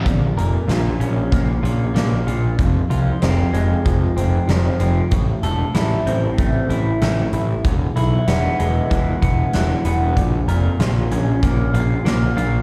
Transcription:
<<
  \new Staff \with { instrumentName = "Clean electric guitar" } { \time 4/4 \key bes \lydian \tempo 4 = 95 bes,8 bes'8 f'8 des'8 bes8 f'8 bes8 f'8 | f,8 f'8 c'8 aes8 f8 c'8 f8 c'8 | a,8 a'8 e'8 c'8 a8 e'8 a8 e'8 | e,8 e'8 b8 gis8 e8 b8 e8 b8 |
bes,8 bes'8 f'8 des'8 bes8 f'8 bes8 f'8 | }
  \new Staff \with { instrumentName = "Picked electric bass" } { \clef bass \time 4/4 \key bes \lydian bes,,8 f,,8 bes,,8 bes,,8 bes,,8 bes,,8 bes,,8 bes,,8 | f,,8 c,8 f,,8 f,,8 f,,8 f,,8 f,,8 f,,8 | a,,8 e,,8 a,,8 a,,8 a,,8 a,,8 a,,8 a,,8 | e,,8 b,,8 e,,8 e,,8 e,,8 e,,8 e,,8 e,,8 |
bes,,8 f,,8 bes,,8 bes,,8 bes,,8 bes,,8 bes,,8 bes,,8 | }
  \new DrumStaff \with { instrumentName = "Drums" } \drummode { \time 4/4 <hh bd>8 hh8 <hh sn>8 hh8 <hh bd>8 hh8 <hh sn>8 hh8 | <hh bd>8 hh8 <hh sn>8 hh8 <hh bd>8 hh8 <hh sn>8 hh8 | <hh bd>8 hh8 <hh sn>8 hh8 <hh bd>8 hh8 <hh sn>8 hh8 | <hh bd>8 hh8 <hh sn>8 hh8 <hh bd>8 <hh bd>8 <hh sn>8 hh8 |
<hh bd>8 hh8 <hh sn>8 hh8 <hh bd>8 hh8 <hh sn>8 hh8 | }
>>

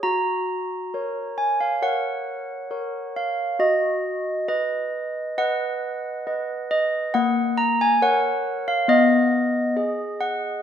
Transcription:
\new Staff \with { instrumentName = "Handbells" } { \time 4/4 \key fis \major \tempo 4 = 68 << { ais''4. gis''16 eis''16 fis''4. eis''8 | dis''4 dis''4 fis''4. dis''8 | fis''8 ais''16 gis''16 fis''8. eis''16 dis''4. fis''8 | } \\ { fis'4 <ais' cis''>4 <ais' cis''>4 <ais' cis''>4 | fis'4 b'4 <b' dis''>4 <b' dis''>4 | ais4 <ais' cis''>4 b4 <gis' dis''>4 | } >> }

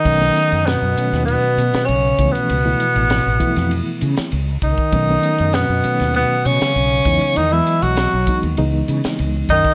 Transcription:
<<
  \new Staff \with { instrumentName = "Tenor saxophone" } { \time 4/4 \key b \mixolydian \tempo 4 = 99 dis'4 b4 b4 cis'8. b16~ | b2~ b8. r8. dis'8~ | dis'4 b4 b8 cis'4. | dis'16 e'8 fis'4 r4. r16 dis'8 | }
  \new Staff \with { instrumentName = "Reed electric piano" } { \time 4/4 \key b \mixolydian <dis fis a b cis'>16 <dis fis a b cis'>4 r16 <dis fis a b cis'>4. r8 <e eis a b cis'>8 | r16 <e eis a b e'>4 r16 <e eis a b e'>4. r4 | <dis fis a b cis'>16 <dis fis a b cis'>4 r16 <dis fis a b cis'>4. r8 <e fis gis b dis'>8 | r16 <e fis gis b dis''>4 r16 <e fis gis b dis'>8 <cis e gis b dis'>4. r8 | }
  \new Staff \with { instrumentName = "Bass clarinet" } { \clef bass \time 4/4 \key b \mixolydian dis4 b,4 b,4 cis8. b,16~ | b,2~ b,8. r8. dis8~ | dis4 b,4 b,8 cis4. | dis16 e8 fis4 r4. r16 dis8 | }
  \new Staff \with { instrumentName = "Fretless electric bass" } { \clef bass \time 4/4 \key b \mixolydian b,,8 r16 fis,8 fis,16 r16 dis,8 r16 b,16 r16 b,,8 cis,16 r16 | cis,8 r16 a,,8 a,,16 r16 eis,8 r16 cis16 r16 cis,8 cis,16 r16 | b,,8 r16 fis,8 fis,16 r16 dis,8 r16 b,16 r16 b,,8 e,16 r16 | e,8 r16 b,,8 b,,16 r16 dis,16 cis,8 cis16 r16 cis,8 fis,16 r16 | }
  \new DrumStaff \with { instrumentName = "Drums" } \drummode { \time 4/4 <cymc bd>8 <hhp cymr>16 cymr16 <cymr sn>8 <hhp cymr>16 <cymr sn>16 cymr8 <hhp cymr>16 <cymr sn>16 cymr8 <hhp bd cymr>16 cymr16 | cymr8 <hhp cymr>16 cymr16 <cymr sn>8 <hhp bd cymr>16 <cymr sn>16 cymr8 <hhp cymr>16 <cymr sn>16 cymr8 <hhp bd cymr>16 bd16 | <bd cymr>8 <hhp cymr>16 cymr16 <cymr sn>8 <hhp cymr>16 <cymr sn>16 cymr8 <hhp cymr>16 <cymr sn>16 cymr8 <hhp bd cymr>16 cymr16 | cymr8 <hhp cymr>16 cymr16 <cymr sn>8 <hhp bd cymr>16 cymr16 cymr8 <hhp cymr>16 <cymr sn>16 cymr8 <hhp bd cymr>16 <bd sn>16 | }
>>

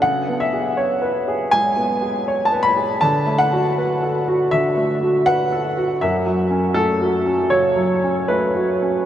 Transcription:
\new Staff \with { instrumentName = "Grand piano" } { \time 4/4 \key fis \minor \tempo 4 = 80 << { fis''8 e''4. gis''4~ gis''16 a''16 b''8 | a''8 fis''4. e''4 fis''4 | e''4 a'4 cis''4 b'4 | } \\ { \tuplet 3/2 { cis8 b8 gis'8 cis''8 b'8 gis'8 gis8 b8 gis'8 cis''8 b'8 gis'8 } | \tuplet 3/2 { d8 a8 fis'8 b'8 a'8 fis'8 d8 a8 fis'8 b'8 a'8 fis'8 } | \tuplet 3/2 { fis,8 fis8 cis'8 a8 fis'8 cis'8 cis8 fis8 cis'8 a8 fis'8 cis'8 } | } >> }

